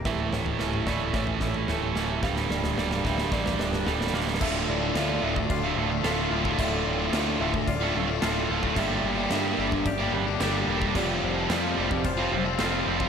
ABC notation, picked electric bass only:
X:1
M:4/4
L:1/8
Q:1/4=110
K:Dm
V:1 name="Picked electric bass" clef=bass
D,,, D,,, D,,,2 A,,,2 D,,, D,,, | D,,, D,,, D,,, D,,, A,,, D,,, D,,, D,,, | D,,, D,,, D,, D,,, D,,, D,,, D,,, D,,, | D,,, D,,, D,, D,,, D,,, D,,, D,,, D,,, |
G,,, G,,, G,, G,,, G,,, G,,, G,,, E,,, | F,,, F,,, F,, F,,, F,,, F,,, F,,, F,,, |]